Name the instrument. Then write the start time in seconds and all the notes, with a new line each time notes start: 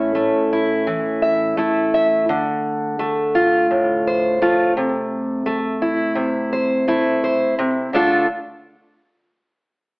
steel-string acoustic guitar
Already playing: A2 A3 C#4 E4 C#5
0.15 A3
0.53 E4
0.87 E3
1.22 E5
1.57 A3 E4
1.94 E5
2.29 D3
2.99 A3
3.35 F4
3.71 A2
4.07 C5
4.41 A3 F4
4.77 C3
5.46 A3
5.82 E4
6.16 C3
6.53 C5
6.88 A3 E4
7.24 C5
7.59 C3
7.93 D3 A3 D4 F4 A4